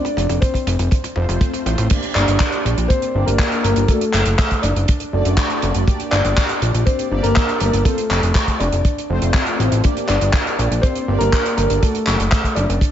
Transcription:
Already playing: grand piano D4 D5
0.05 closed hi-hat, mid tom
0.17 analog synth bass F1, closed hi-hat, mid tom
0.29 analog synth bass F1, closed hi-hat, mid tom
0.40 grand piano C4 C5, kick, closed hi-hat, mid tom
0.54 kick, closed hi-hat, mid tom
0.67 analog synth bass F1, closed hi-hat, mid tom
0.79 analog synth bass F1, closed hi-hat, mid tom
0.91 kick, closed hi-hat, mid tom
1.04 closed hi-hat, mid tom
1.16 analog synth bass F1, analog polysynth A3 C4 F4 C5, mid tom
1.29 analog synth bass F1, analog polysynth A3 C4 F4 C5, closed hi-hat, mid tom
1.41 kick, closed hi-hat, mid tom
1.53 closed hi-hat, mid tom
1.66 analog synth bass A1, analog polysynth A3 C4 F4 C5, closed hi-hat, mid tom
1.78 analog synth bass A1, closed hi-hat, mid tom
1.90 analog polysynth A#3 D4 G4 D5, kick, closed hi-hat, crash
2.03 closed hi-hat
2.14 analog synth bass G1, grand piano D4 D5, clap, closed hi-hat
2.28 analog synth bass G1, closed hi-hat
2.40 kick, clap, closed hi-hat
2.52 closed hi-hat
2.65 analog synth bass A#1, closed hi-hat
2.77 analog synth bass A#1, closed hi-hat
2.88 grand piano C4 C5, kick, closed hi-hat
3.02 closed hi-hat
3.15 analog synth bass G1, analog polysynth A#3 D4 G4 D5
3.26 analog synth bass G1, grand piano A#3 A#4, closed hi-hat
3.39 kick, clap, closed hi-hat
3.52 closed hi-hat
3.63 analog synth bass G1, grand piano A#3 A#4, closed hi-hat
3.76 analog synth bass G1, closed hi-hat
3.88 analog polysynth A3 D4 F#4 D5, grand piano A3 A4, kick, closed hi-hat
4.01 closed hi-hat
4.14 analog synth bass F#1, clap, closed hi-hat
4.25 analog synth bass F#1, closed hi-hat
4.39 kick, clap, closed hi-hat
4.51 kick, closed hi-hat
4.62 analog synth bass F#1, grand piano D4 D5, closed hi-hat
4.76 analog synth bass F#1, closed hi-hat
4.88 kick, closed hi-hat
5.00 closed hi-hat
5.13 analog synth bass F#1, analog polysynth A3 D4 F#4 D5
5.25 analog synth bass F#1, closed hi-hat
5.37 kick, clap, closed hi-hat
5.50 closed hi-hat
5.62 analog synth bass F#1, closed hi-hat
5.75 analog synth bass F#1, closed hi-hat
5.88 analog polysynth A#3 D4 G4 D5, kick, closed hi-hat
6.00 closed hi-hat
6.11 analog synth bass G1, grand piano D4 D5, clap, closed hi-hat
6.25 analog synth bass G1, closed hi-hat
6.37 kick, clap, closed hi-hat
6.49 closed hi-hat
6.62 analog synth bass A#1, closed hi-hat
6.74 analog synth bass A#1, closed hi-hat
6.86 grand piano C4 C5, kick, closed hi-hat
6.99 closed hi-hat
7.11 analog synth bass G1, analog polysynth A#3 D4 G4 D5
7.23 analog synth bass G1, grand piano A#3 A#4, closed hi-hat
7.36 kick, clap, closed hi-hat
7.49 closed hi-hat
7.60 analog synth bass G1, grand piano A#3 A#4, closed hi-hat
7.73 analog synth bass G1, closed hi-hat
7.85 analog polysynth A3 C4 F4 C5, grand piano A3 A4, kick, closed hi-hat
7.98 closed hi-hat
8.10 analog synth bass F1, clap, closed hi-hat
8.23 analog synth bass F1, closed hi-hat
8.35 kick, clap, closed hi-hat
8.48 kick, closed hi-hat
8.59 analog synth bass F1, grand piano D4 D5, closed hi-hat
8.72 analog synth bass F1, closed hi-hat
8.85 kick, closed hi-hat
8.98 closed hi-hat
9.10 analog synth bass F1, analog polysynth A3 C4 F4 C5
9.22 analog synth bass F1, closed hi-hat
9.34 kick, clap, closed hi-hat
9.46 closed hi-hat
9.59 analog synth bass A1, closed hi-hat
9.72 analog synth bass A1, closed hi-hat
9.84 analog polysynth A#3 D4 G4 D5, kick, closed hi-hat
9.97 closed hi-hat
10.08 analog synth bass G1, grand piano D4 D5, clap, closed hi-hat
10.21 analog synth bass G1, closed hi-hat
10.33 kick, clap, closed hi-hat
10.47 closed hi-hat
10.59 analog synth bass A#1, closed hi-hat
10.71 analog synth bass A#1, closed hi-hat
10.82 grand piano C4 C5, kick, closed hi-hat
10.95 closed hi-hat
11.08 analog synth bass G1, analog polysynth A#3 D4 G4 D5
11.19 analog synth bass G1, grand piano A#3 A#4, closed hi-hat
11.33 kick, clap, closed hi-hat
11.45 closed hi-hat
11.56 analog synth bass G1, grand piano A#3 A#4, closed hi-hat
11.70 analog synth bass G1, closed hi-hat
11.80 analog polysynth A3 D4 F#4 D5, grand piano A3 A4, kick, closed hi-hat
11.95 closed hi-hat
12.07 analog synth bass F#1, clap, closed hi-hat
12.20 analog synth bass F#1, closed hi-hat
12.32 kick, clap, closed hi-hat
12.44 kick, closed hi-hat
12.55 analog synth bass F#1, grand piano D4 D5, closed hi-hat
12.69 analog synth bass F#1, closed hi-hat
12.81 kick, closed hi-hat

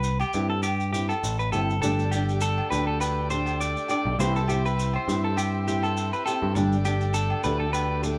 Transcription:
Already playing: picked electric bass C2, clean electric guitar B4
0.04 maracas
0.20 clean electric guitar G4, low agogo, maracas
0.33 picked electric bass G2, nylon-string guitar C4 E4 G4, maracas
0.50 clean electric guitar A4
0.63 clean electric guitar G4, low agogo, maracas
0.80 maracas
0.92 nylon-string guitar C4 E4 G4, clean electric guitar G4, maracas
1.09 clean electric guitar A4, low agogo, maracas
1.23 picked electric bass A1, maracas
1.39 clean electric guitar B4, maracas
1.52 picked electric bass G1, nylon-string guitar C4 E4 G4, clean electric guitar A4, low agogo, maracas
1.70 maracas
1.81 picked electric bass G1, transistor combo organ A3 D4 G4, nylon-string guitar A3 D4 G4, clean electric guitar A4, maracas
1.99 maracas
2.11 nylon-string guitar D4 G4, clean electric guitar G4, low agogo, maracas
2.29 maracas
2.41 clean electric guitar A4, maracas
2.58 low agogo
2.70 picked electric bass D2, nylon-string guitar D4 G4, clean electric guitar B4, maracas
2.87 clean electric guitar A4
3.00 clean electric guitar B4, low agogo, maracas
3.30 nylon-string guitar D4 G4, clean electric guitar C5, maracas
3.46 low agogo, maracas
3.61 clean electric guitar D5, maracas
3.77 maracas
3.88 nylon-string guitar D4 G4, clean electric guitar D5, low agogo, maracas
4.05 picked electric bass B1
4.19 picked electric bass C2, nylon-string guitar E3 C4 E4 G4, transistor combo organ C4 E4, clean electric guitar C5, maracas
4.36 clean electric guitar A4, maracas
4.48 nylon-string guitar C4 E4 G4, clean electric guitar G4, low agogo, maracas
4.66 clean electric guitar B4, maracas
4.79 maracas
4.93 clean electric guitar C5, low agogo
5.08 picked electric bass G2, nylon-string guitar C4 E4 G4, maracas
5.24 clean electric guitar A4
5.37 clean electric guitar G4, low agogo, maracas
5.67 nylon-string guitar C4 E4 G4, clean electric guitar G4, maracas
5.83 clean electric guitar A4, low agogo, maracas
5.97 maracas
6.13 clean electric guitar B4, maracas
6.26 nylon-string guitar G4, clean electric guitar A4, low agogo, maracas
6.30 nylon-string guitar C4
6.42 picked electric bass G2
6.55 picked electric bass G1, nylon-string guitar G3 D4 G4, transistor combo organ A3 D4, muted clean electric guitar stroke, muted nylon-string guitar stroke, maracas
6.72 maracas
6.85 nylon-string guitar D4, clean electric guitar G4, low agogo, maracas
7.01 maracas
7.14 clean electric guitar A4, maracas
7.30 low agogo
7.44 picked electric bass D2, nylon-string guitar A3 D4 G4, clean electric guitar B4, maracas
7.60 clean electric guitar A4
7.73 clean electric guitar B4, low agogo, maracas
8.03 nylon-string guitar A3 D4 G4, muted clean electric guitar stroke, maracas

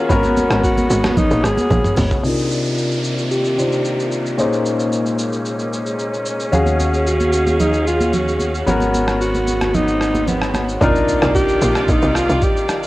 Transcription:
Already playing: grand piano C#4 F4 F#4 A#4, string section F#4
0.09 log drum bass G#1, string section G#3 B3, grand piano B3 C#4 F#4 A#4, kick, shaker
0.23 high conga, shaker
0.37 high conga, shaker
0.50 log drum bass G#1, cross-stick, shaker
0.64 alto saxophone F#4, kick, shaker
0.77 high conga, shaker
0.90 log drum bass G#1, shaker
1.04 cross-stick, snare, high conga, shaker
1.17 alto saxophone D#4, kick, low conga, shaker
1.31 log drum bass A#1, shaker
1.44 log drum bass G#1, alto saxophone G#4, cross-stick, shaker
1.57 high conga, shaker
1.70 log drum bass A#1, kick, high tom, low conga, shaker
1.84 mid tom, shaker
1.96 log drum bass G#1, mid tom, open hi-hat, high conga, shaker
2.11 floor tom, shaker
2.23 grand piano C3 D4 D#4 F4 A#4, string section C3 D#3 A#3 F4 D5, downlifter, shaker
2.38 shaker
2.51 shaker
2.65 shaker
2.78 shaker
2.91 shaker
3.04 shaker
3.18 shaker
3.31 alto saxophone G4, shaker
3.45 shaker
3.58 grand piano C3 D4 D#4 F4 C5, shaker
3.72 shaker
3.85 shaker
3.99 shaker
4.12 shaker
4.26 shaker
4.38 grand piano A#2 C#4 D#4 G#4 C5, string section G#3 C#4, shaker
4.53 shaker
4.66 shaker
4.79 shaker
4.92 shaker
5.06 shaker
5.19 shaker
5.33 shaker
5.45 shaker
5.59 shaker
5.73 shaker
5.86 shaker
5.99 shaker
6.14 shaker
6.26 shaker
6.40 shaker
6.52 analog synth bass D#2, string section D#3 F#4 G#4 F5, grand piano C#4 F#4 G#4 F5, swell, low conga, shaker
6.66 high conga, shaker
6.80 high conga, shaker
6.94 shaker
7.06 alto saxophone F#4, shaker
7.20 high conga, shaker
7.33 shaker
7.47 high conga, shaker
7.60 alto saxophone D#4, low conga, shaker
7.73 shaker
7.87 alto saxophone F4, shaker
8.01 high conga, shaker
8.13 alto saxophone F#4, low conga, shaker
8.28 shaker
8.40 high conga, shaker
8.54 shaker
8.66 analog synth bass G#1, string section G#3 B3, grand piano B3 C#4 F#4 A#4, low conga, shaker
8.80 high conga, shaker
8.94 high conga, shaker
9.08 cross-stick, shaker
9.21 alto saxophone F#4, shaker
9.35 high conga, shaker
9.47 high conga, shaker
9.61 cross-stick, high conga, shaker
9.74 alto saxophone D#4, low conga, shaker
9.88 shaker
10.01 cross-stick, shaker
10.15 high conga, shaker
10.28 alto saxophone B3, low conga, shaker
10.42 cross-stick, shaker
10.54 cross-stick, high conga, shaker
10.69 shaker
10.81 log drum bass C2, string section C3 D#3 A#3 F4 D5, grand piano D4 D#4 F4 A#4, kick, impact, shaker
10.95 shaker
11.08 shaker
11.22 log drum bass C2, cross-stick, shaker
11.35 alto saxophone G4, kick, shaker
11.49 shaker
11.62 log drum bass A#1, shaker
11.75 cross-stick, shaker
11.88 log drum bass A#1, alto saxophone D#4, kick, shaker
12.02 log drum bass C2, shaker
12.15 alto saxophone F4, cross-stick, shaker
12.29 log drum bass C2, shaker
12.42 alto saxophone G4, kick, shaker
12.57 shaker
12.69 cross-stick, shaker
12.83 shaker

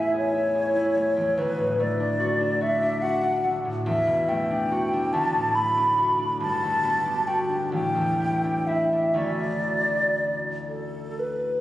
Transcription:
Already playing: harp A1 E2 G#3 A3 E4 G#4, flute E5
0.14 harp G#4, flute C#5
0.35 harp E4
0.55 harp G#4
0.76 harp E4
0.96 harp A3
1.16 harp E2
1.38 harp D2, flute B4
1.59 harp A2
1.80 harp A3, flute D5
2.00 harp D4
2.20 harp F#4
2.40 harp D4
2.61 harp F#4, flute E5
2.83 harp D4
3.02 harp F#4, flute F#5
3.23 harp D4
3.44 harp A3
3.65 harp A2
3.86 harp E2, flute E5
4.07 harp B2
4.28 harp A3, flute G5
4.50 harp D4
4.72 harp F#4
4.93 harp D4
5.13 harp D2, flute A5
5.35 harp A2
5.55 harp A3, flute B5
5.77 harp D4
5.98 harp F#4
6.19 harp D4
6.40 harp G1, flute A5
6.62 harp D2
6.83 harp B3
7.05 harp D4
7.27 harp F#4, flute G5
7.50 harp D4
7.72 harp A1, flute G5
7.95 harp E2
8.20 harp B3
8.44 harp D4
8.67 harp E4, flute E5
8.93 harp D4
9.14 harp D2 A3 C#4 F#4 E5, flute D5
10.68 flute A4
11.19 flute B4

